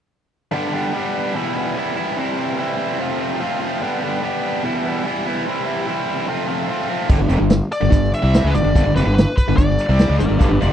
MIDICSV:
0, 0, Header, 1, 6, 480
1, 0, Start_track
1, 0, Tempo, 411523
1, 609, Time_signature, 4, 2, 24, 8
1, 12513, End_track
2, 0, Start_track
2, 0, Title_t, "Lead electric guitar"
2, 0, Program_c, 0, 29
2, 9010, Note_on_c, 0, 74, 89
2, 9457, Note_off_c, 0, 74, 0
2, 9497, Note_on_c, 0, 76, 103
2, 9882, Note_on_c, 0, 71, 58
2, 9903, Note_off_c, 0, 76, 0
2, 9967, Note_off_c, 0, 71, 0
2, 9980, Note_on_c, 0, 74, 90
2, 10441, Note_off_c, 0, 74, 0
2, 10446, Note_on_c, 0, 71, 78
2, 10660, Note_off_c, 0, 71, 0
2, 10674, Note_on_c, 0, 71, 73
2, 10905, Note_off_c, 0, 71, 0
2, 10929, Note_on_c, 0, 71, 78
2, 11156, Note_off_c, 0, 71, 0
2, 11161, Note_on_c, 0, 74, 69
2, 11839, Note_off_c, 0, 74, 0
2, 12513, End_track
3, 0, Start_track
3, 0, Title_t, "Electric slide guitar"
3, 0, Program_c, 1, 29
3, 11886, Note_on_c, 1, 70, 69
3, 11895, Note_on_c, 1, 74, 89
3, 12125, Note_off_c, 1, 74, 0
3, 12128, Note_off_c, 1, 70, 0
3, 12136, Note_on_c, 1, 67, 79
3, 12144, Note_on_c, 1, 71, 83
3, 12356, Note_off_c, 1, 67, 0
3, 12370, Note_off_c, 1, 71, 0
3, 12383, Note_on_c, 1, 74, 74
3, 12513, Note_off_c, 1, 74, 0
3, 12513, End_track
4, 0, Start_track
4, 0, Title_t, "Distorted electric guitar"
4, 0, Program_c, 2, 30
4, 601, Note_on_c, 2, 43, 80
4, 606, Note_on_c, 2, 50, 77
4, 617, Note_on_c, 2, 55, 82
4, 621, Note_on_c, 2, 59, 90
4, 624, Note_on_c, 2, 62, 85
4, 638, Note_on_c, 2, 67, 87
4, 833, Note_off_c, 2, 67, 0
4, 847, Note_on_c, 2, 67, 52
4, 849, Note_off_c, 2, 62, 0
4, 861, Note_off_c, 2, 59, 0
4, 863, Note_on_c, 2, 62, 64
4, 867, Note_off_c, 2, 55, 0
4, 875, Note_on_c, 2, 59, 56
4, 881, Note_on_c, 2, 55, 56
4, 1076, Note_off_c, 2, 55, 0
4, 1085, Note_off_c, 2, 43, 0
4, 1087, Note_off_c, 2, 50, 0
4, 1090, Note_on_c, 2, 55, 76
4, 1095, Note_off_c, 2, 59, 0
4, 1109, Note_on_c, 2, 59, 68
4, 1111, Note_off_c, 2, 62, 0
4, 1123, Note_off_c, 2, 67, 0
4, 1125, Note_on_c, 2, 62, 78
4, 1137, Note_on_c, 2, 67, 68
4, 1555, Note_off_c, 2, 55, 0
4, 1558, Note_on_c, 2, 40, 89
4, 1564, Note_off_c, 2, 59, 0
4, 1572, Note_off_c, 2, 62, 0
4, 1572, Note_on_c, 2, 47, 87
4, 1578, Note_off_c, 2, 67, 0
4, 1581, Note_on_c, 2, 52, 85
4, 1586, Note_on_c, 2, 55, 92
4, 1589, Note_on_c, 2, 59, 91
4, 1600, Note_on_c, 2, 64, 87
4, 1779, Note_off_c, 2, 64, 0
4, 1793, Note_on_c, 2, 64, 57
4, 1802, Note_off_c, 2, 59, 0
4, 1815, Note_off_c, 2, 55, 0
4, 1815, Note_on_c, 2, 59, 57
4, 1816, Note_off_c, 2, 52, 0
4, 1829, Note_on_c, 2, 55, 50
4, 1830, Note_on_c, 2, 52, 50
4, 2032, Note_off_c, 2, 52, 0
4, 2043, Note_off_c, 2, 40, 0
4, 2045, Note_off_c, 2, 55, 0
4, 2046, Note_on_c, 2, 52, 67
4, 2050, Note_off_c, 2, 47, 0
4, 2059, Note_on_c, 2, 55, 61
4, 2060, Note_off_c, 2, 59, 0
4, 2071, Note_off_c, 2, 64, 0
4, 2074, Note_on_c, 2, 59, 67
4, 2085, Note_on_c, 2, 64, 68
4, 2272, Note_off_c, 2, 64, 0
4, 2286, Note_on_c, 2, 64, 67
4, 2291, Note_off_c, 2, 59, 0
4, 2305, Note_off_c, 2, 55, 0
4, 2305, Note_on_c, 2, 59, 62
4, 2312, Note_off_c, 2, 52, 0
4, 2319, Note_on_c, 2, 55, 56
4, 2326, Note_on_c, 2, 52, 52
4, 2513, Note_off_c, 2, 64, 0
4, 2522, Note_off_c, 2, 59, 0
4, 2526, Note_off_c, 2, 52, 0
4, 2528, Note_on_c, 2, 48, 82
4, 2529, Note_off_c, 2, 55, 0
4, 2540, Note_on_c, 2, 52, 76
4, 2548, Note_on_c, 2, 55, 91
4, 2559, Note_on_c, 2, 60, 97
4, 2570, Note_on_c, 2, 64, 84
4, 2754, Note_off_c, 2, 64, 0
4, 2768, Note_on_c, 2, 64, 54
4, 2770, Note_off_c, 2, 60, 0
4, 2784, Note_on_c, 2, 60, 53
4, 2790, Note_off_c, 2, 55, 0
4, 2804, Note_on_c, 2, 55, 51
4, 2989, Note_off_c, 2, 52, 0
4, 2999, Note_off_c, 2, 55, 0
4, 3003, Note_on_c, 2, 52, 71
4, 3008, Note_off_c, 2, 48, 0
4, 3010, Note_off_c, 2, 60, 0
4, 3013, Note_on_c, 2, 55, 68
4, 3024, Note_on_c, 2, 60, 77
4, 3029, Note_off_c, 2, 64, 0
4, 3043, Note_on_c, 2, 64, 74
4, 3471, Note_off_c, 2, 52, 0
4, 3472, Note_on_c, 2, 41, 79
4, 3476, Note_off_c, 2, 55, 0
4, 3482, Note_off_c, 2, 60, 0
4, 3489, Note_on_c, 2, 48, 98
4, 3491, Note_off_c, 2, 64, 0
4, 3496, Note_on_c, 2, 53, 95
4, 3497, Note_on_c, 2, 57, 88
4, 3506, Note_on_c, 2, 60, 86
4, 3519, Note_on_c, 2, 65, 99
4, 3705, Note_off_c, 2, 65, 0
4, 3719, Note_on_c, 2, 65, 68
4, 3724, Note_off_c, 2, 60, 0
4, 3733, Note_off_c, 2, 57, 0
4, 3738, Note_on_c, 2, 60, 68
4, 3747, Note_off_c, 2, 53, 0
4, 3747, Note_on_c, 2, 57, 56
4, 3761, Note_on_c, 2, 53, 52
4, 3940, Note_off_c, 2, 53, 0
4, 3954, Note_on_c, 2, 53, 62
4, 3959, Note_off_c, 2, 57, 0
4, 3960, Note_off_c, 2, 41, 0
4, 3968, Note_off_c, 2, 48, 0
4, 3971, Note_off_c, 2, 60, 0
4, 3973, Note_on_c, 2, 57, 59
4, 3981, Note_off_c, 2, 65, 0
4, 3985, Note_on_c, 2, 60, 70
4, 3995, Note_on_c, 2, 65, 77
4, 4182, Note_off_c, 2, 65, 0
4, 4193, Note_off_c, 2, 60, 0
4, 4196, Note_on_c, 2, 65, 65
4, 4206, Note_off_c, 2, 57, 0
4, 4207, Note_on_c, 2, 60, 59
4, 4215, Note_off_c, 2, 53, 0
4, 4220, Note_on_c, 2, 57, 60
4, 4229, Note_on_c, 2, 53, 59
4, 4427, Note_off_c, 2, 65, 0
4, 4433, Note_off_c, 2, 60, 0
4, 4439, Note_on_c, 2, 43, 82
4, 4440, Note_off_c, 2, 57, 0
4, 4441, Note_on_c, 2, 50, 85
4, 4444, Note_off_c, 2, 53, 0
4, 4448, Note_on_c, 2, 55, 88
4, 4461, Note_on_c, 2, 59, 89
4, 4463, Note_on_c, 2, 62, 90
4, 4477, Note_on_c, 2, 67, 80
4, 4647, Note_off_c, 2, 67, 0
4, 4661, Note_on_c, 2, 67, 63
4, 4668, Note_off_c, 2, 62, 0
4, 4676, Note_off_c, 2, 59, 0
4, 4682, Note_on_c, 2, 62, 54
4, 4690, Note_on_c, 2, 59, 62
4, 4691, Note_off_c, 2, 55, 0
4, 4705, Note_on_c, 2, 55, 52
4, 4904, Note_off_c, 2, 55, 0
4, 4918, Note_on_c, 2, 55, 69
4, 4919, Note_off_c, 2, 59, 0
4, 4924, Note_off_c, 2, 43, 0
4, 4925, Note_off_c, 2, 50, 0
4, 4933, Note_off_c, 2, 62, 0
4, 4933, Note_on_c, 2, 59, 76
4, 4939, Note_off_c, 2, 67, 0
4, 4947, Note_on_c, 2, 62, 72
4, 4953, Note_on_c, 2, 67, 75
4, 5389, Note_off_c, 2, 55, 0
4, 5396, Note_off_c, 2, 59, 0
4, 5399, Note_on_c, 2, 40, 82
4, 5403, Note_off_c, 2, 62, 0
4, 5406, Note_off_c, 2, 67, 0
4, 5409, Note_on_c, 2, 47, 96
4, 5414, Note_on_c, 2, 52, 97
4, 5424, Note_on_c, 2, 55, 93
4, 5427, Note_on_c, 2, 59, 89
4, 5439, Note_on_c, 2, 64, 98
4, 5638, Note_off_c, 2, 64, 0
4, 5652, Note_on_c, 2, 64, 58
4, 5654, Note_off_c, 2, 59, 0
4, 5668, Note_on_c, 2, 59, 59
4, 5669, Note_off_c, 2, 55, 0
4, 5681, Note_off_c, 2, 52, 0
4, 5683, Note_on_c, 2, 55, 57
4, 5695, Note_on_c, 2, 52, 56
4, 5861, Note_off_c, 2, 52, 0
4, 5875, Note_on_c, 2, 52, 60
4, 5881, Note_off_c, 2, 55, 0
4, 5884, Note_off_c, 2, 40, 0
4, 5889, Note_off_c, 2, 47, 0
4, 5895, Note_off_c, 2, 59, 0
4, 5895, Note_on_c, 2, 55, 70
4, 5901, Note_off_c, 2, 64, 0
4, 5909, Note_on_c, 2, 59, 69
4, 5915, Note_on_c, 2, 64, 72
4, 6118, Note_off_c, 2, 64, 0
4, 6132, Note_on_c, 2, 64, 71
4, 6135, Note_off_c, 2, 59, 0
4, 6142, Note_off_c, 2, 55, 0
4, 6149, Note_on_c, 2, 59, 62
4, 6152, Note_off_c, 2, 52, 0
4, 6156, Note_on_c, 2, 55, 57
4, 6166, Note_on_c, 2, 52, 49
4, 6356, Note_off_c, 2, 64, 0
4, 6365, Note_off_c, 2, 59, 0
4, 6368, Note_off_c, 2, 55, 0
4, 6373, Note_off_c, 2, 52, 0
4, 6373, Note_on_c, 2, 48, 80
4, 6388, Note_on_c, 2, 52, 81
4, 6396, Note_on_c, 2, 55, 87
4, 6402, Note_on_c, 2, 60, 94
4, 6411, Note_on_c, 2, 64, 91
4, 6590, Note_off_c, 2, 64, 0
4, 6604, Note_on_c, 2, 64, 65
4, 6610, Note_off_c, 2, 60, 0
4, 6624, Note_on_c, 2, 60, 65
4, 6627, Note_off_c, 2, 55, 0
4, 6641, Note_on_c, 2, 55, 55
4, 6822, Note_off_c, 2, 52, 0
4, 6836, Note_off_c, 2, 55, 0
4, 6836, Note_on_c, 2, 52, 72
4, 6844, Note_off_c, 2, 60, 0
4, 6850, Note_on_c, 2, 55, 76
4, 6851, Note_off_c, 2, 48, 0
4, 6858, Note_off_c, 2, 64, 0
4, 6858, Note_on_c, 2, 60, 81
4, 6872, Note_on_c, 2, 64, 83
4, 7304, Note_on_c, 2, 41, 84
4, 7308, Note_off_c, 2, 52, 0
4, 7315, Note_off_c, 2, 55, 0
4, 7316, Note_on_c, 2, 48, 78
4, 7320, Note_off_c, 2, 60, 0
4, 7323, Note_on_c, 2, 53, 94
4, 7326, Note_off_c, 2, 64, 0
4, 7332, Note_on_c, 2, 57, 96
4, 7340, Note_on_c, 2, 60, 93
4, 7346, Note_on_c, 2, 65, 99
4, 7533, Note_off_c, 2, 65, 0
4, 7543, Note_off_c, 2, 60, 0
4, 7547, Note_on_c, 2, 65, 66
4, 7550, Note_off_c, 2, 57, 0
4, 7557, Note_on_c, 2, 60, 60
4, 7564, Note_on_c, 2, 57, 56
4, 7568, Note_off_c, 2, 53, 0
4, 7582, Note_on_c, 2, 53, 57
4, 7770, Note_off_c, 2, 53, 0
4, 7782, Note_off_c, 2, 57, 0
4, 7784, Note_on_c, 2, 53, 60
4, 7796, Note_on_c, 2, 57, 72
4, 7797, Note_off_c, 2, 41, 0
4, 7798, Note_off_c, 2, 60, 0
4, 7803, Note_off_c, 2, 48, 0
4, 7807, Note_off_c, 2, 65, 0
4, 7812, Note_on_c, 2, 60, 71
4, 7821, Note_on_c, 2, 65, 69
4, 8011, Note_off_c, 2, 65, 0
4, 8024, Note_off_c, 2, 60, 0
4, 8025, Note_on_c, 2, 65, 67
4, 8035, Note_off_c, 2, 57, 0
4, 8038, Note_on_c, 2, 60, 69
4, 8046, Note_off_c, 2, 53, 0
4, 8049, Note_on_c, 2, 57, 64
4, 8060, Note_on_c, 2, 53, 57
4, 8263, Note_off_c, 2, 65, 0
4, 8269, Note_on_c, 2, 43, 80
4, 8270, Note_off_c, 2, 60, 0
4, 8275, Note_off_c, 2, 57, 0
4, 8280, Note_on_c, 2, 50, 90
4, 8281, Note_off_c, 2, 53, 0
4, 8385, Note_off_c, 2, 43, 0
4, 8394, Note_off_c, 2, 50, 0
4, 8399, Note_on_c, 2, 43, 57
4, 8408, Note_on_c, 2, 50, 63
4, 8498, Note_off_c, 2, 43, 0
4, 8503, Note_on_c, 2, 41, 76
4, 8511, Note_off_c, 2, 50, 0
4, 8516, Note_on_c, 2, 48, 89
4, 8619, Note_off_c, 2, 41, 0
4, 8624, Note_on_c, 2, 43, 57
4, 8626, Note_off_c, 2, 48, 0
4, 8631, Note_on_c, 2, 50, 67
4, 8829, Note_off_c, 2, 43, 0
4, 8833, Note_off_c, 2, 50, 0
4, 9108, Note_on_c, 2, 43, 62
4, 9114, Note_on_c, 2, 50, 67
4, 9204, Note_off_c, 2, 50, 0
4, 9208, Note_off_c, 2, 43, 0
4, 9218, Note_on_c, 2, 50, 71
4, 9222, Note_on_c, 2, 43, 61
4, 9426, Note_off_c, 2, 50, 0
4, 9428, Note_off_c, 2, 43, 0
4, 9589, Note_on_c, 2, 48, 90
4, 9594, Note_on_c, 2, 55, 95
4, 9605, Note_on_c, 2, 60, 93
4, 9825, Note_off_c, 2, 48, 0
4, 9830, Note_on_c, 2, 49, 82
4, 9832, Note_off_c, 2, 55, 0
4, 9836, Note_on_c, 2, 56, 76
4, 9841, Note_off_c, 2, 60, 0
4, 9953, Note_off_c, 2, 49, 0
4, 9956, Note_off_c, 2, 56, 0
4, 9968, Note_on_c, 2, 43, 56
4, 9970, Note_on_c, 2, 50, 72
4, 10066, Note_off_c, 2, 43, 0
4, 10070, Note_off_c, 2, 50, 0
4, 10080, Note_on_c, 2, 43, 67
4, 10084, Note_on_c, 2, 50, 66
4, 10198, Note_off_c, 2, 43, 0
4, 10207, Note_off_c, 2, 50, 0
4, 10212, Note_on_c, 2, 43, 85
4, 10220, Note_on_c, 2, 50, 101
4, 10318, Note_off_c, 2, 43, 0
4, 10328, Note_off_c, 2, 50, 0
4, 10332, Note_on_c, 2, 43, 53
4, 10341, Note_on_c, 2, 50, 66
4, 10451, Note_off_c, 2, 43, 0
4, 10456, Note_off_c, 2, 50, 0
4, 10462, Note_on_c, 2, 41, 89
4, 10479, Note_on_c, 2, 48, 98
4, 10569, Note_off_c, 2, 41, 0
4, 10577, Note_off_c, 2, 48, 0
4, 10587, Note_on_c, 2, 43, 55
4, 10588, Note_on_c, 2, 50, 70
4, 10771, Note_off_c, 2, 43, 0
4, 10771, Note_off_c, 2, 50, 0
4, 11058, Note_on_c, 2, 43, 55
4, 11069, Note_on_c, 2, 50, 64
4, 11165, Note_off_c, 2, 43, 0
4, 11167, Note_off_c, 2, 50, 0
4, 11179, Note_on_c, 2, 43, 58
4, 11181, Note_on_c, 2, 50, 71
4, 11366, Note_off_c, 2, 43, 0
4, 11368, Note_off_c, 2, 50, 0
4, 11534, Note_on_c, 2, 48, 93
4, 11544, Note_on_c, 2, 55, 87
4, 11554, Note_on_c, 2, 60, 92
4, 11756, Note_off_c, 2, 48, 0
4, 11760, Note_on_c, 2, 49, 89
4, 11769, Note_off_c, 2, 55, 0
4, 11773, Note_on_c, 2, 56, 90
4, 11775, Note_off_c, 2, 60, 0
4, 11878, Note_off_c, 2, 49, 0
4, 11884, Note_off_c, 2, 56, 0
4, 11885, Note_on_c, 2, 43, 59
4, 11889, Note_on_c, 2, 50, 67
4, 11982, Note_off_c, 2, 43, 0
4, 11986, Note_off_c, 2, 50, 0
4, 11996, Note_on_c, 2, 43, 60
4, 12000, Note_on_c, 2, 50, 60
4, 12101, Note_off_c, 2, 43, 0
4, 12108, Note_off_c, 2, 50, 0
4, 12115, Note_on_c, 2, 43, 83
4, 12122, Note_on_c, 2, 50, 96
4, 12230, Note_off_c, 2, 43, 0
4, 12239, Note_off_c, 2, 50, 0
4, 12244, Note_on_c, 2, 43, 60
4, 12252, Note_on_c, 2, 50, 63
4, 12363, Note_off_c, 2, 43, 0
4, 12368, Note_on_c, 2, 41, 86
4, 12371, Note_off_c, 2, 50, 0
4, 12384, Note_on_c, 2, 48, 94
4, 12481, Note_off_c, 2, 41, 0
4, 12489, Note_off_c, 2, 48, 0
4, 12513, End_track
5, 0, Start_track
5, 0, Title_t, "Fingered electric bass"
5, 0, Program_c, 3, 33
5, 8278, Note_on_c, 3, 31, 74
5, 8395, Note_off_c, 3, 31, 0
5, 8400, Note_on_c, 3, 31, 75
5, 8504, Note_off_c, 3, 31, 0
5, 8511, Note_on_c, 3, 29, 91
5, 8631, Note_off_c, 3, 29, 0
5, 8636, Note_on_c, 3, 31, 72
5, 8866, Note_off_c, 3, 31, 0
5, 9126, Note_on_c, 3, 31, 75
5, 9228, Note_off_c, 3, 31, 0
5, 9235, Note_on_c, 3, 31, 78
5, 9465, Note_off_c, 3, 31, 0
5, 9603, Note_on_c, 3, 36, 93
5, 9830, Note_off_c, 3, 36, 0
5, 9847, Note_on_c, 3, 37, 93
5, 9960, Note_off_c, 3, 37, 0
5, 9971, Note_on_c, 3, 31, 63
5, 10076, Note_off_c, 3, 31, 0
5, 10083, Note_on_c, 3, 31, 69
5, 10198, Note_off_c, 3, 31, 0
5, 10214, Note_on_c, 3, 31, 86
5, 10324, Note_off_c, 3, 31, 0
5, 10329, Note_on_c, 3, 31, 67
5, 10441, Note_off_c, 3, 31, 0
5, 10449, Note_on_c, 3, 29, 94
5, 10558, Note_off_c, 3, 29, 0
5, 10565, Note_on_c, 3, 31, 77
5, 10791, Note_off_c, 3, 31, 0
5, 11065, Note_on_c, 3, 31, 78
5, 11161, Note_off_c, 3, 31, 0
5, 11168, Note_on_c, 3, 31, 75
5, 11392, Note_off_c, 3, 31, 0
5, 11535, Note_on_c, 3, 36, 90
5, 11756, Note_off_c, 3, 36, 0
5, 11776, Note_on_c, 3, 37, 87
5, 11885, Note_off_c, 3, 37, 0
5, 11903, Note_on_c, 3, 31, 77
5, 12008, Note_off_c, 3, 31, 0
5, 12014, Note_on_c, 3, 31, 62
5, 12123, Note_off_c, 3, 31, 0
5, 12142, Note_on_c, 3, 31, 85
5, 12244, Note_off_c, 3, 31, 0
5, 12251, Note_on_c, 3, 31, 80
5, 12362, Note_off_c, 3, 31, 0
5, 12389, Note_on_c, 3, 29, 98
5, 12491, Note_off_c, 3, 29, 0
5, 12513, End_track
6, 0, Start_track
6, 0, Title_t, "Drums"
6, 8276, Note_on_c, 9, 49, 79
6, 8277, Note_on_c, 9, 36, 88
6, 8393, Note_off_c, 9, 49, 0
6, 8394, Note_off_c, 9, 36, 0
6, 8509, Note_on_c, 9, 42, 60
6, 8626, Note_off_c, 9, 42, 0
6, 8746, Note_on_c, 9, 42, 84
6, 8753, Note_on_c, 9, 38, 108
6, 8863, Note_off_c, 9, 42, 0
6, 8870, Note_off_c, 9, 38, 0
6, 9001, Note_on_c, 9, 42, 58
6, 9118, Note_off_c, 9, 42, 0
6, 9132, Note_on_c, 9, 38, 34
6, 9239, Note_on_c, 9, 42, 78
6, 9240, Note_on_c, 9, 36, 94
6, 9249, Note_off_c, 9, 38, 0
6, 9356, Note_off_c, 9, 36, 0
6, 9356, Note_off_c, 9, 42, 0
6, 9373, Note_on_c, 9, 38, 30
6, 9487, Note_on_c, 9, 42, 58
6, 9490, Note_off_c, 9, 38, 0
6, 9604, Note_off_c, 9, 42, 0
6, 9728, Note_on_c, 9, 42, 88
6, 9735, Note_on_c, 9, 38, 104
6, 9845, Note_off_c, 9, 42, 0
6, 9852, Note_off_c, 9, 38, 0
6, 9965, Note_on_c, 9, 42, 64
6, 9972, Note_on_c, 9, 38, 34
6, 10082, Note_off_c, 9, 42, 0
6, 10089, Note_off_c, 9, 38, 0
6, 10211, Note_on_c, 9, 36, 84
6, 10216, Note_on_c, 9, 42, 73
6, 10328, Note_off_c, 9, 36, 0
6, 10333, Note_off_c, 9, 42, 0
6, 10462, Note_on_c, 9, 42, 57
6, 10578, Note_off_c, 9, 42, 0
6, 10708, Note_on_c, 9, 42, 81
6, 10715, Note_on_c, 9, 38, 108
6, 10825, Note_off_c, 9, 42, 0
6, 10832, Note_off_c, 9, 38, 0
6, 10934, Note_on_c, 9, 42, 57
6, 10936, Note_on_c, 9, 36, 73
6, 11051, Note_off_c, 9, 42, 0
6, 11052, Note_off_c, 9, 36, 0
6, 11174, Note_on_c, 9, 42, 65
6, 11175, Note_on_c, 9, 36, 94
6, 11291, Note_off_c, 9, 42, 0
6, 11292, Note_off_c, 9, 36, 0
6, 11307, Note_on_c, 9, 38, 35
6, 11413, Note_on_c, 9, 42, 60
6, 11424, Note_off_c, 9, 38, 0
6, 11529, Note_off_c, 9, 42, 0
6, 11651, Note_on_c, 9, 42, 70
6, 11658, Note_on_c, 9, 38, 96
6, 11768, Note_off_c, 9, 42, 0
6, 11775, Note_off_c, 9, 38, 0
6, 11897, Note_on_c, 9, 42, 62
6, 12014, Note_off_c, 9, 42, 0
6, 12137, Note_on_c, 9, 42, 63
6, 12138, Note_on_c, 9, 36, 83
6, 12254, Note_off_c, 9, 36, 0
6, 12254, Note_off_c, 9, 42, 0
6, 12384, Note_on_c, 9, 42, 51
6, 12501, Note_off_c, 9, 42, 0
6, 12513, End_track
0, 0, End_of_file